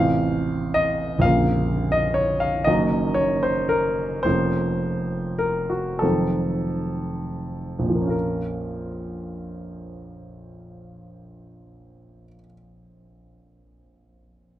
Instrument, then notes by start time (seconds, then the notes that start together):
grand piano
Already playing: A1 A2 C3 C4 F4 F5
0.74 D#5
1.18 A#0 A#1 F5
1.25 C#3 A#3 F4
1.92 D#5
2.14 C#5
2.40 F5
2.64 F#1 F#2 D#3 A#3 F#4 D#5
3.14 C#5
3.43 C5
3.69 A#4
4.23 F1 F2 F3 A#3 C#4 C5
5.39 A#4
5.70 F#4
5.99 F1 F2 D#3 F#3 A4
6.03 C4
7.79 A#1
7.84 F2
7.90 F3
7.95 A#3
8.02 C#4
8.08 F4 A#4